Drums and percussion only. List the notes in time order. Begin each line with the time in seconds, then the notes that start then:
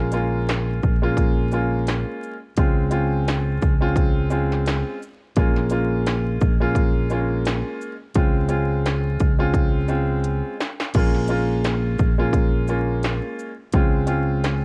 0.12 closed hi-hat, shaker
0.49 cross-stick, snare, closed hi-hat
0.83 kick, shaker
1.17 kick, closed hi-hat
1.52 shaker
1.87 cross-stick, snare, closed hi-hat
2.23 shaker
2.57 kick, closed hi-hat
2.91 closed hi-hat, shaker
3.28 cross-stick, snare, closed hi-hat
3.62 kick, shaker
3.96 kick, closed hi-hat
4.31 shaker
4.52 snare
4.66 cross-stick, snare, closed hi-hat
5.02 shaker
5.36 kick, closed hi-hat
5.56 snare
5.70 closed hi-hat, shaker
6.07 cross-stick, snare, closed hi-hat
6.41 kick, shaker
6.75 kick, closed hi-hat
7.10 shaker
7.45 cross-stick, snare, closed hi-hat
7.81 shaker
8.15 kick, closed hi-hat
8.49 closed hi-hat, shaker
8.86 cross-stick, snare, closed hi-hat
9.20 kick, closed hi-hat, shaker
9.54 kick, closed hi-hat
9.89 shaker
10.24 closed hi-hat
10.60 snare, shaker
10.80 snare
10.94 kick, closed hi-hat, crash
11.14 snare
11.28 closed hi-hat, shaker
11.64 cross-stick, snare, closed hi-hat
11.99 kick, shaker
12.33 kick, closed hi-hat
12.68 shaker
13.03 cross-stick, snare, closed hi-hat
13.39 shaker
13.73 kick, closed hi-hat
14.07 closed hi-hat, shaker
14.44 cross-stick, snare, closed hi-hat